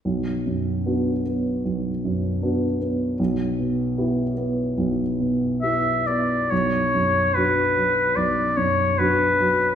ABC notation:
X:1
M:4/4
L:1/8
Q:1/4=74
K:Bm
V:1 name="Oboe"
z8 | z6 e d | c2 B2 d c B2 |]
V:2 name="Grand piano"
B,,, F,, [B,DF] B, B,,, F,, [B,DF] B, | B,,, B,, [B,EG] B, B,,, B,, [B,EG] B, | B,,, F,, [F,DF] F, B,,, F,, [F,DF] F, |]